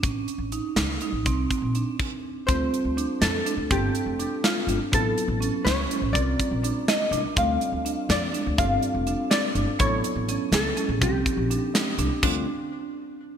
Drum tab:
CC |-----|---x-|-----|-----|
HH |xxxxx|xxx--|xxxxx|xxxxx|
SD |---o-|-----|---o-|---o-|
BD |o----|oo-o-|o----|o----|

CC |-----|-----|-----|-----|
HH |xxxxx|xxxxx|xxxxx|xxxxx|
SD |---o-|---o-|---o-|---o-|
BD |o----|oo---|o----|o----|

CC |-----|-----|x----|
HH |xxxxx|xxxxx|-----|
SD |---o-|---o-|-----|
BD |o----|oo---|o----|